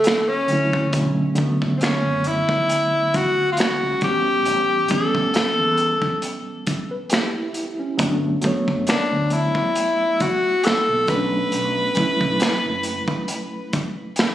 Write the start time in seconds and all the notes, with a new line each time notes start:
Already playing: A3
0.04 snare, closed hi-hat
0.08 finger snap
0.29 C#4
0.48 D3 F#3 A3, closed hi-hat
0.53 E4
0.73 kick
0.91 B1 D3 F#3 A3, kick, closed hi-hat
0.96 C#4
1.35 D3 F#3 A3, kick, closed hi-hat
1.40 B3
1.62 A1, kick
1.77 C4, closed hi-hat
1.83 C#4, finger snap, muted fretless electric bass stroke, snare
2.06 F#1
2.24 E4, closed hi-hat
2.49 kick
2.69 closed hi-hat
3.14 F#4, kick, closed hi-hat
3.53 F4
3.57 F#4, snare, closed hi-hat
3.61 finger snap
3.83 C#2
4.00 A1 E3 G3 B3 G4, kick, closed hi-hat
4.05 C#4
4.45 A1, closed hi-hat
4.88 E3 G3 B3 A4, kick, closed hi-hat
4.93 C#4
5.15 A1, kick
5.34 A4, finger snap, muted fretless electric bass stroke, snare, closed hi-hat
5.59 E2
5.77 closed hi-hat
6.02 kick
6.22 closed hi-hat
6.67 kick, closed hi-hat
6.91 B4
7.10 G4, snare, closed hi-hat
7.14 finger snap
7.35 E4
7.54 closed hi-hat
7.79 C#4
7.97 G1 F#3 A3 B3, kick, closed hi-hat
8.03 D4
8.42 F#3 A3 B3, kick, closed hi-hat
8.47 C#5
8.68 F#1, kick
8.87 D4, finger snap, muted fretless electric bass stroke, snare, closed hi-hat
9.12 D2
9.30 E4, closed hi-hat
9.55 kick
9.75 closed hi-hat
10.20 F#4, kick, closed hi-hat
10.63 A4, snare, closed hi-hat
10.68 finger snap
10.89 B1
11.06 B1 F#3 A3 C#4 B4, kick, closed hi-hat
11.11 D4
11.52 B1, closed hi-hat
11.95 F#3 A3 C#4, kick, closed hi-hat
12.00 E4
12.21 B1, kick
12.40 finger snap, snare, closed hi-hat
12.66 F#1
12.83 closed hi-hat
13.08 kick
13.28 closed hi-hat
13.73 kick, closed hi-hat
14.16 snare, closed hi-hat
14.20 finger snap